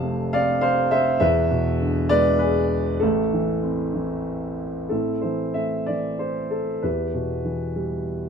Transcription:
0.00 1.17 F1 medium
0.00 1.17 F2 medium
0.00 0.88 C3 medium
0.00 1.17 A3 soft
0.00 0.33 F5 medium
0.00 1.23 A5 loud
0.33 1.18 C4 medium
0.33 0.61 D5 medium
0.33 0.60 F5 loud
0.61 0.89 C5 medium
0.61 0.92 F5 loud
0.91 1.19 C5 medium
0.91 1.18 E5 loud
1.20 2.98 E1 medium
1.20 2.98 E2 medium
1.20 2.06 B4 medium
1.20 2.13 E5 loud
1.51 2.68 B2 medium
1.81 2.98 D3 medium
2.09 3.00 G#3 medium
2.09 2.37 B4 medium
2.09 2.41 D5 loud
2.39 2.98 G#4 medium
2.39 3.03 B4 medium
3.00 4.88 A1 medium
3.00 4.88 A2 medium
3.00 4.22 E4 medium
3.00 4.21 A4 medium
3.33 3.92 E3 medium
3.63 4.87 C4 soft
3.94 4.88 E3 medium
4.89 6.80 A2 soft
4.89 5.85 C4 soft
4.89 5.84 E4 soft
4.89 5.20 A4 medium
5.21 5.87 E3 soft
5.21 5.56 C5 soft
5.54 6.80 A3 soft
5.54 5.89 E5 medium
5.86 6.81 E3 soft
5.86 6.21 D5 medium
6.19 6.53 C5 medium
6.51 6.80 A4 medium
6.83 8.29 E2 soft
6.83 8.03 E4 soft
6.83 8.03 G4 soft
6.83 8.02 B4 medium
7.14 8.29 B2 soft
7.44 8.29 E3 soft
7.76 8.29 G3 soft

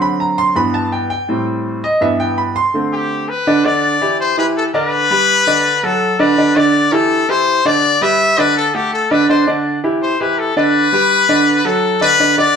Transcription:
0.00 0.53 D3 medium
0.00 0.53 F#3 medium
0.00 0.54 C4 medium
0.00 0.20 B5 loud
0.20 0.38 A#5 medium
0.38 0.56 C6 loud
0.56 1.08 G2 medium
0.56 1.08 E3 medium
0.56 1.09 B3 medium
0.56 0.74 B5 loud
0.74 0.92 A5 medium
0.92 1.09 G5 medium
1.10 1.44 G5 loud
1.29 1.81 A2 medium
1.29 1.81 G3 medium
1.29 1.81 C4 medium
1.84 2.01 D#5 loud
2.01 2.53 G2 medium
2.01 2.54 E3 medium
2.01 2.54 B3 medium
2.01 2.19 E5 medium
2.20 2.38 G5 loud
2.38 2.56 B5 medium
2.56 3.07 C6 loud
2.74 3.26 D3 medium
2.74 3.26 A3 medium
2.74 3.27 C4 medium
2.93 3.30 G4 medium
3.29 3.67 B4 loud
3.47 3.62 D3 medium
3.47 3.62 D4 medium
3.47 3.62 D5 medium
3.65 3.95 D3 medium
3.65 3.95 D4 medium
3.65 4.20 D5 loud
3.65 3.95 D5 medium
4.01 4.31 E3 medium
4.01 4.31 E4 medium
4.01 4.32 G4 medium
4.20 4.37 C5 medium
4.37 4.67 E3 medium
4.37 4.68 E4 medium
4.37 4.68 G4 medium
4.37 4.46 B4 medium
4.57 4.65 A4 medium
4.74 5.04 D3 medium
4.74 5.04 D4 loud
4.74 5.86 B4 loud
4.74 5.04 D5 loud
5.11 5.40 G3 medium
5.11 5.41 G4 medium
5.11 5.41 B4 medium
5.47 5.77 D3 medium
5.47 5.77 D4 medium
5.47 5.77 D5 loud
5.83 6.13 F#3 medium
5.83 6.13 F#4 medium
5.83 6.13 A4 medium
5.83 6.22 A4 loud
6.19 6.34 D3 medium
6.19 6.34 D4 loud
6.19 6.58 B4 loud
6.19 6.35 D5 loud
6.38 6.53 D3 loud
6.38 6.53 D4 medium
6.38 6.53 D5 medium
6.56 6.86 D3 loud
6.56 6.86 D4 medium
6.56 6.86 D5 loud
6.56 6.95 D5 loud
6.92 7.22 E3 medium
6.92 7.22 E4 medium
6.92 7.22 G4 medium
6.92 7.31 A4 loud
7.29 7.58 E3 medium
7.29 7.59 E4 medium
7.29 7.59 G4 medium
7.29 7.68 C5 loud
7.65 7.95 D3 medium
7.65 7.95 D4 medium
7.65 7.95 D5 loud
7.65 8.04 D5 loud
8.01 8.31 G3 medium
8.01 8.31 G4 medium
8.01 8.32 B4 medium
8.01 8.40 E5 loud
8.38 8.68 D3 medium
8.38 8.68 D4 medium
8.38 8.57 B4 loud
8.38 8.68 D5 loud
8.57 8.76 A4 loud
8.74 9.04 A3 medium
8.74 8.92 G4 loud
8.74 9.04 A4 medium
8.74 9.04 F#5 medium
8.93 9.13 A4 loud
9.11 9.26 D3 medium
9.11 9.26 D4 medium
9.11 9.29 B4 loud
9.11 9.26 D5 loud
9.29 9.44 D3 medium
9.29 9.44 D4 medium
9.29 9.46 C5 medium
9.29 9.44 D5 medium
9.47 9.77 D3 medium
9.47 9.77 D4 medium
9.47 9.77 D5 medium
9.84 10.13 E3 medium
9.84 10.13 E4 medium
9.84 10.14 G4 medium
10.02 10.22 C5 medium
10.21 10.50 E3 medium
10.21 10.50 E4 medium
10.21 10.50 G4 medium
10.21 10.40 B4 medium
10.39 10.56 A4 medium
10.56 10.86 D3 medium
10.56 10.86 D4 loud
10.56 11.67 B4 loud
10.56 10.86 D5 loud
10.93 11.22 G3 medium
10.93 11.23 G4 medium
10.93 11.23 B4 medium
11.29 11.59 D3 medium
11.29 11.59 D4 medium
11.29 11.59 D5 medium
11.65 11.95 F#3 medium
11.65 11.95 F#4 medium
11.65 11.95 A4 medium
11.65 12.02 A4 loud
12.01 12.16 D3 loud
12.01 12.16 D4 loud
12.01 12.36 B4 loud
12.01 12.16 D5 medium
12.19 12.34 D3 medium
12.19 12.35 D4 medium
12.19 12.35 D5 medium
12.38 12.56 D3 loud
12.38 12.56 D4 medium
12.38 12.56 D5 loud

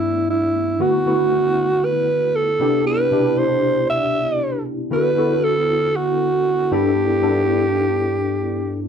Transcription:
0.00 0.82 G2 medium
0.00 0.79 A3 medium
0.00 0.80 B3 medium
0.00 0.82 D4 medium
0.00 0.30 E4 medium
0.00 0.80 E4 medium
0.30 0.83 E4 medium
0.79 0.97 D3 medium
0.79 0.97 A3 medium
0.79 0.97 B3 medium
0.79 0.98 E4 medium
0.79 0.98 F#4 medium
0.79 1.86 F#4 medium
1.05 1.76 D3 medium
1.05 1.76 A3 medium
1.05 1.76 B3 medium
1.05 1.76 E4 medium
1.05 1.76 F#4 medium
1.85 2.37 B4 medium
2.35 2.86 A4 medium
2.59 3.01 C3 medium
2.59 3.01 B3 medium
2.59 3.01 D4 medium
2.59 3.01 E4 medium
2.59 3.01 G4 medium
2.87 3.40 B4 loud
3.11 3.81 B2 medium
3.11 3.81 C3 medium
3.11 3.82 D4 medium
3.11 3.82 E4 medium
3.11 3.82 G4 medium
3.38 3.89 C5 loud
3.90 4.62 E5 loud
4.90 5.08 D3 medium
4.90 5.09 B3 medium
4.90 5.09 E4 medium
4.90 5.09 F#4 medium
4.90 5.09 A4 medium
4.90 5.46 B4 medium
5.17 5.87 D3 medium
5.17 5.87 B3 medium
5.17 5.87 E4 medium
5.17 5.87 F#4 medium
5.17 5.87 A4 medium
5.44 5.98 A4 loud
5.96 6.75 F#4 loud
6.71 7.12 G2 medium
6.71 7.12 B3 medium
6.71 7.13 D4 medium
6.71 7.13 E4 medium
6.71 8.78 G4 medium
6.71 7.13 A4 medium
7.22 7.92 G2 medium
7.22 7.92 B3 medium
7.22 7.92 D4 medium
7.22 7.93 E4 medium
7.22 7.93 A4 medium

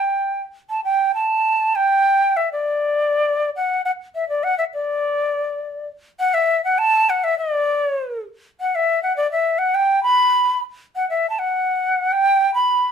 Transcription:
0.00 0.42 G5 medium
0.70 0.83 A5 medium
0.84 1.12 G5 medium
1.15 1.77 A5 medium
1.76 2.38 G5 medium
2.37 2.49 E5 medium
2.52 3.50 D5 medium
3.56 3.82 F#5 medium
3.85 3.91 F#5 medium
4.15 4.27 E5 medium
4.29 4.45 D5 medium
4.44 4.57 F#5 medium
4.58 4.64 E5 medium
4.74 5.87 D5 medium
6.20 6.35 F#5 loud
6.34 6.64 E5 medium
6.64 6.80 F#5 medium
6.78 7.11 A5 loud
7.10 7.25 F#5 medium
7.24 7.38 E5 medium
7.38 8.23 D5 medium
8.61 8.77 F#5 medium
8.75 9.02 E5 medium
9.03 9.16 F#5 medium
9.17 9.30 D5 medium
9.32 9.60 E5 medium
9.59 9.76 F#5 medium
9.75 10.02 G5 medium
10.03 10.59 B5 loud
10.96 11.08 F#5 medium
11.10 11.29 E5 medium
11.30 11.40 A5 medium
11.39 12.14 F#5 medium
12.12 12.54 G5 loud
12.54 12.92 B5 medium

